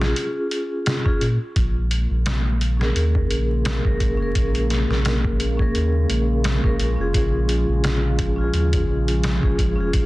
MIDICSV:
0, 0, Header, 1, 5, 480
1, 0, Start_track
1, 0, Key_signature, -5, "minor"
1, 0, Tempo, 697674
1, 1074, Time_signature, 4, 2, 24, 8
1, 6920, End_track
2, 0, Start_track
2, 0, Title_t, "Vibraphone"
2, 0, Program_c, 0, 11
2, 0, Note_on_c, 0, 61, 71
2, 6, Note_on_c, 0, 65, 65
2, 23, Note_on_c, 0, 68, 80
2, 686, Note_off_c, 0, 61, 0
2, 695, Note_off_c, 0, 65, 0
2, 703, Note_off_c, 0, 68, 0
2, 719, Note_on_c, 0, 61, 83
2, 727, Note_on_c, 0, 65, 74
2, 733, Note_on_c, 0, 68, 88
2, 827, Note_off_c, 0, 61, 0
2, 831, Note_off_c, 0, 65, 0
2, 834, Note_off_c, 0, 68, 0
2, 1907, Note_on_c, 0, 61, 71
2, 1923, Note_on_c, 0, 68, 69
2, 1941, Note_on_c, 0, 70, 80
2, 2605, Note_off_c, 0, 61, 0
2, 2613, Note_off_c, 0, 68, 0
2, 2622, Note_off_c, 0, 70, 0
2, 2639, Note_on_c, 0, 61, 73
2, 2647, Note_on_c, 0, 68, 66
2, 2657, Note_on_c, 0, 70, 80
2, 2851, Note_off_c, 0, 61, 0
2, 2855, Note_off_c, 0, 68, 0
2, 2860, Note_off_c, 0, 70, 0
2, 2870, Note_on_c, 0, 61, 79
2, 2888, Note_on_c, 0, 68, 72
2, 2906, Note_on_c, 0, 70, 91
2, 3807, Note_off_c, 0, 61, 0
2, 3816, Note_off_c, 0, 68, 0
2, 3825, Note_off_c, 0, 70, 0
2, 3833, Note_on_c, 0, 61, 76
2, 3849, Note_on_c, 0, 68, 69
2, 3865, Note_on_c, 0, 70, 82
2, 4528, Note_off_c, 0, 61, 0
2, 4536, Note_off_c, 0, 68, 0
2, 4544, Note_off_c, 0, 70, 0
2, 4562, Note_on_c, 0, 61, 76
2, 4570, Note_on_c, 0, 68, 68
2, 4579, Note_on_c, 0, 70, 86
2, 4773, Note_off_c, 0, 61, 0
2, 4776, Note_off_c, 0, 68, 0
2, 4781, Note_off_c, 0, 70, 0
2, 4790, Note_on_c, 0, 61, 87
2, 4806, Note_on_c, 0, 65, 80
2, 4824, Note_on_c, 0, 68, 98
2, 5727, Note_off_c, 0, 61, 0
2, 5735, Note_off_c, 0, 65, 0
2, 5744, Note_off_c, 0, 68, 0
2, 5753, Note_on_c, 0, 61, 76
2, 5767, Note_on_c, 0, 65, 70
2, 5786, Note_on_c, 0, 68, 83
2, 6448, Note_off_c, 0, 61, 0
2, 6455, Note_off_c, 0, 65, 0
2, 6465, Note_off_c, 0, 68, 0
2, 6483, Note_on_c, 0, 61, 75
2, 6493, Note_on_c, 0, 65, 71
2, 6498, Note_on_c, 0, 68, 79
2, 6693, Note_off_c, 0, 61, 0
2, 6698, Note_off_c, 0, 65, 0
2, 6701, Note_off_c, 0, 68, 0
2, 6712, Note_on_c, 0, 61, 89
2, 6727, Note_on_c, 0, 65, 76
2, 6744, Note_on_c, 0, 68, 93
2, 6920, Note_off_c, 0, 61, 0
2, 6920, Note_off_c, 0, 65, 0
2, 6920, Note_off_c, 0, 68, 0
2, 6920, End_track
3, 0, Start_track
3, 0, Title_t, "Ambient pad"
3, 0, Program_c, 1, 92
3, 1072, Note_on_c, 1, 65, 91
3, 1073, Note_on_c, 1, 56, 76
3, 1073, Note_on_c, 1, 58, 74
3, 1074, Note_on_c, 1, 49, 76
3, 4886, Note_off_c, 1, 58, 0
3, 4912, Note_on_c, 1, 53, 76
3, 6806, Note_off_c, 1, 65, 0
3, 6832, Note_on_c, 1, 63, 93
3, 6920, Note_off_c, 1, 49, 0
3, 6920, Note_off_c, 1, 53, 0
3, 6920, Note_off_c, 1, 56, 0
3, 6920, Note_off_c, 1, 63, 0
3, 6920, End_track
4, 0, Start_track
4, 0, Title_t, "Sub bass"
4, 0, Program_c, 2, 38
4, 0, Note_on_c, 2, 34, 94
4, 93, Note_off_c, 2, 34, 0
4, 832, Note_on_c, 2, 46, 95
4, 951, Note_off_c, 2, 46, 0
4, 1074, Note_on_c, 2, 34, 100
4, 1422, Note_off_c, 2, 34, 0
4, 1447, Note_on_c, 2, 34, 98
4, 2013, Note_off_c, 2, 34, 0
4, 2032, Note_on_c, 2, 39, 95
4, 2248, Note_off_c, 2, 39, 0
4, 2274, Note_on_c, 2, 34, 84
4, 2622, Note_off_c, 2, 34, 0
4, 2647, Note_on_c, 2, 34, 80
4, 2741, Note_off_c, 2, 34, 0
4, 2754, Note_on_c, 2, 34, 98
4, 2872, Note_off_c, 2, 34, 0
4, 2886, Note_on_c, 2, 29, 84
4, 2980, Note_off_c, 2, 29, 0
4, 2995, Note_on_c, 2, 34, 99
4, 3342, Note_off_c, 2, 34, 0
4, 3368, Note_on_c, 2, 34, 87
4, 3934, Note_off_c, 2, 34, 0
4, 3956, Note_on_c, 2, 39, 103
4, 4169, Note_off_c, 2, 39, 0
4, 4196, Note_on_c, 2, 34, 92
4, 4543, Note_off_c, 2, 34, 0
4, 4568, Note_on_c, 2, 34, 84
4, 4661, Note_off_c, 2, 34, 0
4, 4677, Note_on_c, 2, 34, 100
4, 4793, Note_off_c, 2, 34, 0
4, 4808, Note_on_c, 2, 29, 87
4, 4901, Note_off_c, 2, 29, 0
4, 4914, Note_on_c, 2, 34, 98
4, 5262, Note_off_c, 2, 34, 0
4, 5285, Note_on_c, 2, 34, 96
4, 5852, Note_off_c, 2, 34, 0
4, 5872, Note_on_c, 2, 39, 104
4, 6087, Note_off_c, 2, 39, 0
4, 6113, Note_on_c, 2, 34, 85
4, 6461, Note_off_c, 2, 34, 0
4, 6489, Note_on_c, 2, 34, 82
4, 6582, Note_off_c, 2, 34, 0
4, 6594, Note_on_c, 2, 34, 88
4, 6712, Note_off_c, 2, 34, 0
4, 6723, Note_on_c, 2, 29, 86
4, 6819, Note_off_c, 2, 29, 0
4, 6834, Note_on_c, 2, 34, 102
4, 6920, Note_off_c, 2, 34, 0
4, 6920, End_track
5, 0, Start_track
5, 0, Title_t, "Drums"
5, 10, Note_on_c, 9, 38, 55
5, 79, Note_off_c, 9, 38, 0
5, 113, Note_on_c, 9, 42, 83
5, 181, Note_off_c, 9, 42, 0
5, 353, Note_on_c, 9, 42, 64
5, 422, Note_off_c, 9, 42, 0
5, 593, Note_on_c, 9, 42, 80
5, 597, Note_on_c, 9, 38, 106
5, 661, Note_off_c, 9, 42, 0
5, 666, Note_off_c, 9, 38, 0
5, 727, Note_on_c, 9, 36, 95
5, 796, Note_off_c, 9, 36, 0
5, 834, Note_on_c, 9, 42, 62
5, 903, Note_off_c, 9, 42, 0
5, 1074, Note_on_c, 9, 36, 109
5, 1074, Note_on_c, 9, 42, 84
5, 1142, Note_off_c, 9, 36, 0
5, 1142, Note_off_c, 9, 42, 0
5, 1314, Note_on_c, 9, 42, 65
5, 1383, Note_off_c, 9, 42, 0
5, 1553, Note_on_c, 9, 42, 78
5, 1558, Note_on_c, 9, 38, 108
5, 1622, Note_off_c, 9, 42, 0
5, 1627, Note_off_c, 9, 38, 0
5, 1796, Note_on_c, 9, 42, 59
5, 1865, Note_off_c, 9, 42, 0
5, 1933, Note_on_c, 9, 38, 45
5, 2002, Note_off_c, 9, 38, 0
5, 2035, Note_on_c, 9, 42, 80
5, 2104, Note_off_c, 9, 42, 0
5, 2167, Note_on_c, 9, 36, 90
5, 2236, Note_off_c, 9, 36, 0
5, 2274, Note_on_c, 9, 42, 69
5, 2343, Note_off_c, 9, 42, 0
5, 2513, Note_on_c, 9, 42, 88
5, 2518, Note_on_c, 9, 38, 103
5, 2582, Note_off_c, 9, 42, 0
5, 2586, Note_off_c, 9, 38, 0
5, 2647, Note_on_c, 9, 36, 98
5, 2716, Note_off_c, 9, 36, 0
5, 2754, Note_on_c, 9, 36, 89
5, 2754, Note_on_c, 9, 42, 67
5, 2823, Note_off_c, 9, 36, 0
5, 2823, Note_off_c, 9, 42, 0
5, 2994, Note_on_c, 9, 42, 85
5, 2995, Note_on_c, 9, 36, 102
5, 3063, Note_off_c, 9, 36, 0
5, 3063, Note_off_c, 9, 42, 0
5, 3129, Note_on_c, 9, 42, 41
5, 3198, Note_off_c, 9, 42, 0
5, 3236, Note_on_c, 9, 42, 66
5, 3241, Note_on_c, 9, 38, 39
5, 3305, Note_off_c, 9, 42, 0
5, 3309, Note_off_c, 9, 38, 0
5, 3375, Note_on_c, 9, 38, 40
5, 3444, Note_off_c, 9, 38, 0
5, 3474, Note_on_c, 9, 42, 83
5, 3479, Note_on_c, 9, 38, 107
5, 3543, Note_off_c, 9, 42, 0
5, 3548, Note_off_c, 9, 38, 0
5, 3609, Note_on_c, 9, 36, 96
5, 3678, Note_off_c, 9, 36, 0
5, 3715, Note_on_c, 9, 42, 77
5, 3783, Note_off_c, 9, 42, 0
5, 3848, Note_on_c, 9, 36, 77
5, 3917, Note_off_c, 9, 36, 0
5, 3955, Note_on_c, 9, 42, 57
5, 4024, Note_off_c, 9, 42, 0
5, 4194, Note_on_c, 9, 42, 72
5, 4263, Note_off_c, 9, 42, 0
5, 4433, Note_on_c, 9, 42, 83
5, 4437, Note_on_c, 9, 38, 113
5, 4501, Note_off_c, 9, 42, 0
5, 4506, Note_off_c, 9, 38, 0
5, 4568, Note_on_c, 9, 36, 89
5, 4637, Note_off_c, 9, 36, 0
5, 4675, Note_on_c, 9, 42, 65
5, 4744, Note_off_c, 9, 42, 0
5, 4914, Note_on_c, 9, 36, 108
5, 4916, Note_on_c, 9, 42, 89
5, 4983, Note_off_c, 9, 36, 0
5, 4984, Note_off_c, 9, 42, 0
5, 5152, Note_on_c, 9, 42, 69
5, 5221, Note_off_c, 9, 42, 0
5, 5392, Note_on_c, 9, 42, 85
5, 5397, Note_on_c, 9, 38, 114
5, 5461, Note_off_c, 9, 42, 0
5, 5466, Note_off_c, 9, 38, 0
5, 5632, Note_on_c, 9, 42, 75
5, 5633, Note_on_c, 9, 36, 90
5, 5701, Note_off_c, 9, 42, 0
5, 5702, Note_off_c, 9, 36, 0
5, 5873, Note_on_c, 9, 42, 59
5, 5941, Note_off_c, 9, 42, 0
5, 6006, Note_on_c, 9, 42, 78
5, 6007, Note_on_c, 9, 36, 93
5, 6075, Note_off_c, 9, 42, 0
5, 6076, Note_off_c, 9, 36, 0
5, 6248, Note_on_c, 9, 42, 60
5, 6317, Note_off_c, 9, 42, 0
5, 6354, Note_on_c, 9, 42, 84
5, 6358, Note_on_c, 9, 38, 111
5, 6422, Note_off_c, 9, 42, 0
5, 6427, Note_off_c, 9, 38, 0
5, 6488, Note_on_c, 9, 36, 89
5, 6557, Note_off_c, 9, 36, 0
5, 6594, Note_on_c, 9, 36, 90
5, 6597, Note_on_c, 9, 42, 70
5, 6663, Note_off_c, 9, 36, 0
5, 6665, Note_off_c, 9, 42, 0
5, 6834, Note_on_c, 9, 36, 104
5, 6834, Note_on_c, 9, 42, 85
5, 6903, Note_off_c, 9, 36, 0
5, 6903, Note_off_c, 9, 42, 0
5, 6920, End_track
0, 0, End_of_file